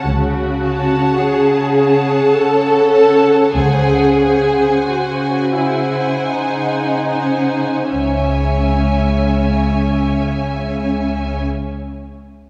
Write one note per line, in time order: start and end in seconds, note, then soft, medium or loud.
0.05 1.04 C#2 medium
0.05 1.06 C#3 medium
0.05 1.17 F#4 medium
0.63 1.75 C#5 soft
0.63 1.75 F#5 soft
0.63 1.74 A5 soft
1.19 2.21 C#3 medium
1.19 2.34 G#4 medium
1.77 2.91 C#5 soft
1.77 2.91 F#5 soft
1.77 2.91 A5 soft
2.32 3.40 C#3 medium
2.32 3.54 A4 medium
2.92 3.53 C#5 soft
2.92 3.54 F#5 soft
2.92 3.53 A5 soft
3.54 4.68 C#2 medium
3.54 4.70 C#3 medium
3.54 4.83 G#4 medium
3.54 4.18 C5 soft
3.54 4.18 F#5 soft
3.54 4.18 G#5 soft
4.20 5.54 C5 soft
4.20 5.54 F#5 soft
4.20 5.54 G#5 soft
4.85 6.12 C#3 soft
4.85 5.54 F#4 medium
5.54 6.28 E4 medium
5.54 7.07 G#5 soft
5.58 7.08 C5 soft
5.58 7.08 F#5 soft
6.29 7.73 C#3 soft
6.29 7.91 D#4 medium
7.10 7.90 C5 soft
7.10 7.90 F#5 soft
7.10 7.90 G#5 soft
7.90 11.44 C#2 soft
7.90 11.45 C#3 soft
7.90 11.42 C#4 soft
7.90 11.43 C#5 soft
7.90 11.43 E5 soft
7.90 11.44 G#5 soft